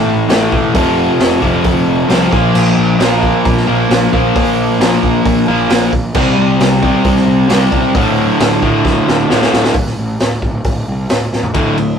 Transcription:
Already playing: overdriven electric guitar A2 E3 A3
0.07 picked electric bass A1
0.28 picked electric bass A1, overdriven electric guitar A2 E3 A3, snare, open hi-hat
0.52 picked electric bass E1, kick
0.74 picked electric bass F1, overdriven electric guitar F2 C3 F3, kick, open hi-hat
1.20 picked electric bass F1, snare, open hi-hat
1.41 picked electric bass F1, overdriven electric guitar F2 C3 F3, kick
1.64 picked electric bass F1, kick, open hi-hat
1.88 picked electric bass F1
2.08 picked electric bass C2, overdriven electric guitar F2 C3 F3, snare, open hi-hat
2.32 picked electric bass A#1, overdriven electric guitar A#2 F3 A#3, kick
2.55 picked electric bass A#1, crash
2.78 picked electric bass A#1
2.98 picked electric bass A#1, overdriven electric guitar A#2 F3 A#3, snare, open hi-hat
3.23 kick
3.45 picked electric bass A#1, kick, open hi-hat
3.57 snare
3.67 picked electric bass A#1, overdriven electric guitar A#2 F3 A#3
3.90 picked electric bass A#1, snare, open hi-hat
4.13 picked electric bass A#1, overdriven electric guitar A#2 F3 A#3, kick
4.36 picked electric bass A#1, kick, open hi-hat
4.79 picked electric bass A#1, overdriven electric guitar A#2 F3 A#3, snare, open hi-hat
5.03 picked electric bass A#1, kick
5.25 picked electric bass A#1, kick, open hi-hat
5.48 picked electric bass A#1, overdriven electric guitar A#2 F3 A#3
5.70 picked electric bass A#1, snare, open hi-hat
5.92 picked electric bass A#1, kick
6.14 picked electric bass C2, overdriven electric guitar C3 G3 C4, kick, crash
6.38 picked electric bass C2
6.60 picked electric bass C2, snare, open hi-hat
6.83 overdriven electric guitar C3 G3 C4, kick
7.04 picked electric bass C2, kick, open hi-hat
7.16 snare
7.26 picked electric bass C2
7.49 picked electric bass C2, overdriven electric guitar C3 G3 C4, snare, open hi-hat
7.72 picked electric bass C2, kick
7.95 picked electric bass D1, overdriven electric guitar D2 A2 D3, kick, open hi-hat
8.40 picked electric bass D1, snare, open hi-hat
8.61 picked electric bass D1, overdriven electric guitar D2 A2 D3, kick
8.84 picked electric bass D1, kick, snare
9.07 picked electric bass D1, snare
9.29 picked electric bass D1, overdriven electric guitar D2 A2 D3, snare
9.42 snare
9.53 picked electric bass D1, snare
9.64 snare
9.74 picked electric bass D1, kick, open hi-hat
9.87 snare
9.97 picked electric bass A1
10.20 picked electric bass D1, snare, open hi-hat
10.42 picked electric bass D1, kick
10.64 picked electric bass D1, kick, open hi-hat
10.88 picked electric bass C2
11.09 picked electric bass D1, snare, open hi-hat
11.33 picked electric bass D1, snare
11.43 floor tom
11.54 picked electric bass D1, overdriven electric guitar D2 A2 D3, kick, ride
11.78 picked electric bass D1, overdriven electric guitar D2 A2, ride

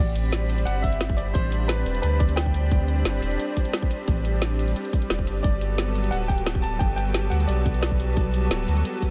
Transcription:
Already playing: grand piano D5
0.00 sub bass A1, analog synth pad G3 C4 D4 B5
0.16 closed hi-hat
0.33 snare, closed hi-hat
0.50 closed hi-hat
0.58 closed hi-hat
0.65 sub bass G1, grand piano F#5, closed hi-hat
0.82 grand piano E5, kick, closed hi-hat
0.92 closed hi-hat
1.01 snare, closed hi-hat
1.10 kick
1.17 grand piano D5, closed hi-hat
1.34 sub bass A1, grand piano C5, kick, closed hi-hat
1.52 closed hi-hat
1.68 grand piano B4, snare, closed hi-hat
1.86 sub bass E1, closed hi-hat
1.95 closed hi-hat
2.02 sub bass D2, grand piano B4, closed hi-hat
2.19 grand piano D5, kick, closed hi-hat
2.29 closed hi-hat
2.36 grand piano G5, snare, closed hi-hat
2.46 kick
2.54 closed hi-hat
2.71 kick, closed hi-hat
2.88 closed hi-hat
3.05 sub bass G1, snare, closed hi-hat
3.22 sub bass E1, closed hi-hat
3.31 closed hi-hat
3.40 closed hi-hat
3.57 kick, closed hi-hat
3.65 closed hi-hat
3.73 snare, closed hi-hat
3.82 kick
3.91 closed hi-hat
4.08 sub bass A1, kick, closed hi-hat
4.25 closed hi-hat
4.42 snare, closed hi-hat
4.59 closed hi-hat
4.68 closed hi-hat
4.76 closed hi-hat
4.85 closed hi-hat
4.93 kick, closed hi-hat
5.02 closed hi-hat
5.10 sub bass E1, snare, closed hi-hat
5.19 kick
5.27 sub bass G1, closed hi-hat
5.43 sub bass G1, analog synth pad F#3 B3 A4, grand piano D5, kick, closed hi-hat
5.61 closed hi-hat
5.78 snare, closed hi-hat
5.95 closed hi-hat
6.04 closed hi-hat
6.11 sub bass D1, grand piano F#5, closed hi-hat
6.28 grand piano G5, kick, closed hi-hat
6.38 closed hi-hat
6.46 snare, closed hi-hat
6.55 kick
6.62 grand piano A5, closed hi-hat
6.79 sub bass G1, grand piano G5, kick, closed hi-hat
6.96 grand piano G5, closed hi-hat
7.14 snare, closed hi-hat
7.30 sub bass D2, grand piano F#5, closed hi-hat
7.40 closed hi-hat
7.47 sub bass B1, grand piano D5, closed hi-hat
7.66 kick, closed hi-hat
7.74 closed hi-hat
7.81 grand piano D5, snare, closed hi-hat
7.91 kick
8.00 closed hi-hat
8.17 kick, closed hi-hat
8.34 closed hi-hat
8.51 sub bass D1, snare, closed hi-hat
8.68 sub bass D2, closed hi-hat
8.77 closed hi-hat
8.85 closed hi-hat
9.02 kick, closed hi-hat

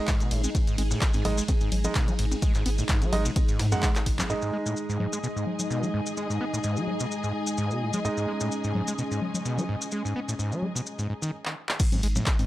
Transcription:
Already playing: string machine G#3 D#4 G#4
0.07 acid bass G#2, kick, snare, clap, closed hi-hat, open hi-hat, ride, maracas
0.20 acid bass B2, closed hi-hat, maracas
0.31 sub bass G#1, acid bass A2, closed hi-hat, open hi-hat, ride
0.44 acid bass G#3, closed hi-hat, high conga, maracas
0.55 acid bass G#2, kick, closed hi-hat, ride, maracas
0.67 acid bass G#2, closed hi-hat, maracas
0.78 sub bass G#1, acid bass G#3, closed hi-hat, open hi-hat, ride, high conga
0.91 acid bass A2, snare, maracas
1.01 kick, snare, clap, closed hi-hat, ride, maracas
1.13 acid bass G#2, open hi-hat, high conga, maracas
1.25 sub bass G#1, acid bass G#2, grand piano G#3 D#4 D#5, open hi-hat, ride, low conga
1.38 acid bass G#3, snare, closed hi-hat, maracas
1.48 acid bass B2, kick, closed hi-hat, ride, high conga, maracas
1.61 acid bass G#2, closed hi-hat, maracas
1.72 sub bass G#1, closed hi-hat, open hi-hat, ride, low conga
1.84 grand piano G#3 D#4 D#5, closed hi-hat, high conga, low conga, maracas
1.95 acid bass B2, kick, snare, clap, closed hi-hat, ride, maracas
2.08 acid bass F#3, closed hi-hat, low conga, maracas
2.19 sub bass G#1, acid bass G#2, closed hi-hat, open hi-hat, ride
2.31 snare, closed hi-hat, high conga, maracas
2.42 acid bass G#3, kick, closed hi-hat, ride, maracas
2.55 acid bass G#2, snare, clap, closed hi-hat, maracas
2.66 sub bass G#1, acid bass B3, closed hi-hat, open hi-hat, ride, high conga
2.78 acid bass A2, closed hi-hat, maracas
2.89 acid bass G#2, kick, snare, clap, closed hi-hat, ride, maracas
3.02 acid bass F#3, closed hi-hat, high conga, maracas
3.13 sub bass G#1, acid bass G#3, grand piano G#3 D#4 D#5, closed hi-hat, open hi-hat, ride, low conga
3.25 acid bass B2, snare, closed hi-hat, maracas
3.36 kick, closed hi-hat, ride, high conga, maracas
3.48 acid bass G#2, closed hi-hat, maracas
3.59 sub bass G#2, acid bass A2, snare, closed hi-hat, open hi-hat, ride
3.72 acid bass F#2, grand piano G#3 D#4 F#5, snare, closed hi-hat, high conga, maracas
3.83 acid bass A2, kick, snare, clap, closed hi-hat, open hi-hat, ride, maracas
3.96 clap, closed hi-hat, maracas
4.06 sub bass G#1, kick, closed hi-hat, open hi-hat, ride
4.19 acid bass F#2, clap, closed hi-hat, high conga, low conga, maracas
4.30 acid bass G#2, string machine G#3 D#4 D#5, grand piano G#3 D#4 D#5, string section G#4, maracas
4.42 acid bass G#2, maracas
4.53 acid bass G#3
4.66 acid bass A2, maracas
4.77 maracas
4.87 acid bass G#2, string section G#5, maracas
4.92 string section D#5
5.00 acid bass G#2, low conga
5.13 acid bass G#3, maracas
5.24 acid bass B2, maracas
5.36 acid bass G#2, maracas
5.47 low conga
5.59 low conga, maracas
5.70 acid bass B2, maracas
5.83 acid bass F#3, low conga, maracas
5.94 acid bass G#2
6.06 maracas
6.17 acid bass G#3, maracas
6.30 acid bass G#2, maracas
6.41 acid bass B3
6.53 acid bass A2, maracas
6.63 acid bass G#2, maracas
6.77 acid bass F#3, maracas
6.88 acid bass G#3, low conga
7.00 acid bass B2, maracas
7.12 maracas
7.24 acid bass G#2, maracas
7.47 maracas
7.58 acid bass G#2, maracas
7.71 acid bass B2, maracas
7.81 acid bass A2
7.93 acid bass G#3, low conga, maracas
8.05 acid bass G#2, grand piano G#3 D#4 D#5, string machine C#4, maracas
8.17 acid bass G#2, maracas
8.28 acid bass G#3
8.40 acid bass A2, maracas
8.52 maracas
8.64 acid bass G#2, maracas
8.75 acid bass G#2, low conga
8.88 acid bass G#3, maracas
8.98 acid bass B2, maracas
9.11 acid bass G#2, maracas
9.22 low conga
9.35 low conga, maracas
9.45 acid bass B2, maracas
9.58 acid bass F#3, low conga, maracas
9.69 acid bass G#2
9.82 maracas
9.91 acid bass G#3, maracas
10.05 acid bass G#2, maracas
10.16 acid bass B3
10.28 acid bass A2, maracas
10.39 acid bass G#2, maracas
10.52 acid bass F#3, maracas
10.63 acid bass G#3, low conga
10.75 acid bass B2, maracas
10.86 maracas
10.99 acid bass G#2, maracas
11.10 acid bass G#2
11.22 acid bass D#3, maracas
11.45 clap
11.69 clap
11.80 acid bass G#2, string machine G#3 D#4 D#5, kick, closed hi-hat, crash, maracas
11.92 acid bass G#2, closed hi-hat, high conga, low conga, maracas
12.03 sub bass G#1, acid bass G#3, closed hi-hat, open hi-hat
12.16 acid bass A2, snare, high conga, low conga, maracas
12.26 kick, snare, clap, closed hi-hat, maracas
12.39 acid bass G#2, open hi-hat, high conga, maracas

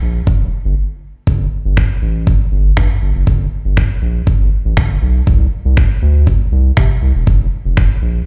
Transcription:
0.02 analog synth bass A#1
0.27 kick
0.40 analog synth bass F1
0.65 analog synth bass G1
1.27 analog synth bass G1, kick
1.65 analog synth bass G1
1.77 finger snap, kick
2.02 analog synth bass A1
2.27 kick
2.52 analog synth bass G1
2.77 analog synth bass G2, finger snap, kick
3.02 analog synth bass G1
3.15 analog synth bass F#1
3.27 analog synth bass G1, kick
3.65 analog synth bass G1
3.77 finger snap, kick
4.02 analog synth bass A#1
4.27 kick
4.40 analog synth bass G1
4.65 analog synth bass A1
4.77 analog synth bass G1, finger snap, kick
5.02 analog synth bass B1
5.27 analog synth bass C2, kick
5.65 analog synth bass C2
5.77 finger snap, kick
6.02 analog synth bass D2
6.27 kick
6.52 analog synth bass C2
6.77 analog synth bass C3, finger snap, kick
7.02 analog synth bass C2
7.15 analog synth bass E1
7.27 analog synth bass F1, kick
7.65 analog synth bass F1
7.77 finger snap, kick
8.02 analog synth bass A#1

